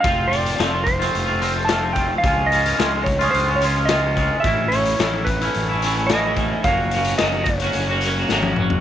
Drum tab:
HH |x-xxx-xxx-x-x-x-|x-xxx-xxx-x-x-x-|x-xxx-xxx-x-x-x-|x-xxx-xxx-x-----|
SD |----o--o----o---|----o-------o---|----o-------o---|----o-------o---|
T1 |----------------|----------------|----------------|-------------o--|
T2 |----------------|----------------|----------------|--------------o-|
FT |----------------|----------------|----------------|---------------o|
BD |o-----o-------o-|o-----o-------o-|o-----o-------o-|o-----o---------|